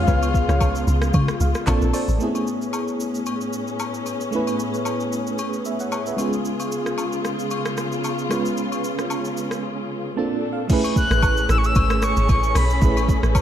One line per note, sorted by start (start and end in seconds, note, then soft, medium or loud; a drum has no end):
0.00 1.63 C#3 medium
0.00 1.62 G#3 medium
0.00 1.63 B3 medium
0.00 1.64 C#4 medium
0.00 1.63 F4 medium
0.00 1.64 F4 medium
0.00 1.63 G#4 medium
0.00 1.65 G#4 medium
0.00 1.64 F5 loud
0.07 0.46 C#2 loud
0.07 0.18 F4 medium
0.07 0.19 B4 medium
0.07 0.19 C#5 loud
0.07 kick loud
0.07 shaker medium
0.23 high agogo medium
0.23 shaker medium
0.34 kick loud
0.34 shaker medium
0.48 0.85 C#2 loud
0.48 0.58 F4 medium
0.48 0.58 B4 medium
0.48 0.58 C#5 medium
0.48 cross-stick medium
0.48 shaker soft
0.61 kick loud
0.61 high agogo medium
0.61 low woodblock medium
0.61 shaker medium
0.75 shaker medium
0.87 1.12 C#2 loud
0.87 shaker medium
1.02 cross-stick loud
1.02 shaker medium
1.13 1.28 C#3 loud
1.13 kick loud
1.13 high agogo medium
1.13 shaker medium
1.28 cross-stick loud
1.28 shaker medium
1.40 1.54 C#2 medium
1.40 1.66 F5 medium
1.40 shaker medium
1.55 cross-stick medium
1.55 shaker medium
1.66 1.81 A#1 loud
1.66 2.20 A#3 medium
1.66 2.20 C4 medium
1.66 2.20 D4 medium
1.66 2.21 F4 medium
1.66 2.20 A4 medium
1.66 2.21 A4 medium
1.66 1.92 A5 medium
1.66 kick loud
1.66 clap medium
1.66 high agogo medium
1.66 low woodblock medium
1.66 shaker medium
1.82 1.93 A#1 loud
1.82 shaker medium
1.93 2.18 A4 medium
1.93 2.18 C5 medium
1.93 2.18 D5 medium
1.93 2.19 A5 medium
1.93 open hi-hat medium
1.93 high agogo medium
1.93 shaker medium
2.08 2.19 A1 loud
2.08 shaker medium
2.18 6.14 A2 medium
2.18 4.28 A3 medium
2.18 4.28 B3 medium
2.18 8.27 B3 medium
2.18 2.28 C4 medium
2.18 6.14 C#4 medium
2.18 4.30 E4 medium
2.18 10.13 G#4 medium
2.18 shaker medium
2.23 4.32 C#4 medium
2.23 4.30 G#4 medium
2.35 high agogo medium
2.35 shaker medium
2.47 shaker medium
2.62 shaker soft
2.73 high agogo medium
2.73 low woodblock medium
2.73 shaker medium
2.88 shaker soft
3.00 shaker medium
3.15 shaker medium
3.26 high agogo medium
3.26 shaker medium
3.41 shaker soft
3.53 shaker medium
3.67 shaker medium
3.80 high agogo medium
3.80 low woodblock medium
3.80 shaker medium
3.94 shaker medium
4.06 high agogo medium
4.06 shaker medium
4.21 shaker medium
4.31 6.14 A3 medium
4.31 6.14 B3 medium
4.31 6.15 C#4 medium
4.31 6.16 E4 medium
4.31 shaker medium
4.36 5.64 B4 medium
4.47 high agogo medium
4.47 shaker medium
4.59 shaker medium
4.74 shaker soft
4.85 high agogo medium
4.85 low woodblock medium
4.85 shaker medium
5.00 shaker soft
5.12 shaker medium
5.27 shaker medium
5.38 high agogo medium
5.38 shaker medium
5.53 shaker soft
5.65 5.80 B4 soft
5.65 5.80 E5 medium
5.65 shaker medium
5.80 5.91 C#5 medium
5.80 5.92 F#5 medium
5.80 shaker soft
5.92 6.06 G#4 medium
5.92 6.06 C#5 medium
5.92 high agogo medium
5.92 low woodblock medium
5.92 shaker medium
6.06 6.32 B4 medium
6.06 6.32 E5 medium
6.06 shaker medium
6.17 10.13 C#3 medium
6.17 8.26 G#3 medium
6.17 8.27 B3 medium
6.17 8.27 C#4 medium
6.17 10.13 F4 medium
6.17 8.28 F4 medium
6.17 high agogo medium
6.17 shaker medium
6.22 8.28 G#4 medium
6.33 shaker medium
6.45 shaker medium
6.60 high agogo medium
6.60 shaker medium
6.72 shaker medium
6.86 cross-stick medium
6.86 shaker soft
6.98 high agogo medium
6.98 low woodblock medium
6.98 shaker medium
7.13 shaker soft
7.25 cross-stick medium
7.25 shaker medium
7.39 shaker medium
7.51 high agogo medium
7.51 shaker medium
7.66 cross-stick loud
7.66 shaker soft
7.77 cross-stick medium
7.77 shaker medium
7.92 shaker medium
8.04 high agogo medium
8.04 low woodblock medium
8.04 shaker medium
8.19 shaker medium
8.29 10.12 G#3 medium
8.29 10.13 B3 medium
8.29 10.15 C#4 medium
8.29 10.13 C#4 medium
8.29 10.14 F4 medium
8.29 cross-stick medium
8.29 high agogo medium
8.29 shaker medium
8.34 10.15 B4 medium
8.46 shaker medium
8.57 shaker medium
8.72 high agogo medium
8.72 shaker medium
8.84 shaker medium
8.99 cross-stick medium
8.99 shaker soft
9.10 high agogo medium
9.10 low woodblock medium
9.10 shaker medium
9.25 shaker soft
9.37 shaker medium
9.51 cross-stick medium
9.51 shaker medium
10.16 10.69 A#2 medium
10.16 10.69 A#3 medium
10.16 10.69 C4 medium
10.16 10.70 C4 medium
10.16 10.69 D4 medium
10.16 10.70 D4 medium
10.16 10.70 F4 medium
10.16 10.69 A4 medium
10.16 10.71 A4 medium
10.16 10.50 A5 medium
10.53 10.69 F5 medium
10.68 12.77 A3 medium
10.68 13.42 A3 medium
10.68 12.78 C#4 medium
10.68 13.42 C#4 medium
10.68 12.78 E4 medium
10.68 13.42 G#4 medium
10.68 12.79 G#4 medium
10.68 kick loud
10.68 crash loud
10.68 shaker medium
10.73 12.80 B4 loud
10.85 high agogo medium
10.85 shaker medium
10.96 11.46 F#6 loud
10.96 kick loud
10.96 shaker medium
11.11 11.47 A1 loud
11.11 cross-stick loud
11.11 shaker medium
11.22 kick loud
11.22 high agogo medium
11.22 low woodblock medium
11.22 shaker medium
11.37 shaker medium
11.49 11.74 A1 loud
11.49 11.59 E6 loud
11.49 cross-stick loud
11.49 shaker loud
11.58 11.67 C#6 medium
11.64 12.05 E6 loud
11.64 shaker medium
11.75 12.14 G#1 loud
11.75 kick loud
11.75 high agogo medium
11.75 shaker medium
11.90 cross-stick loud
11.90 shaker medium
12.02 12.58 C#6 loud
12.02 cross-stick loud
12.02 shaker loud
12.17 12.28 G#1 medium
12.17 shaker medium
12.29 12.54 A1 loud
12.29 kick loud
12.29 high agogo medium
12.29 shaker medium
12.43 shaker medium
12.55 12.80 B1 loud
12.55 13.36 B5 loud
12.55 cross-stick loud
12.55 open hi-hat medium
12.55 high agogo medium
12.55 shaker loud
12.70 shaker medium
12.80 13.20 A1 loud
12.80 13.42 A3 medium
12.80 13.42 C#4 medium
12.80 13.42 E4 medium
12.80 13.42 G#4 medium
12.80 kick loud
12.80 shaker medium
12.85 13.42 B4 medium
12.97 high agogo medium
12.97 shaker medium
13.09 kick loud
13.09 shaker medium
13.23 13.42 A1 loud
13.23 cross-stick medium
13.23 shaker medium
13.35 kick loud
13.35 high agogo medium
13.35 low woodblock medium
13.35 shaker medium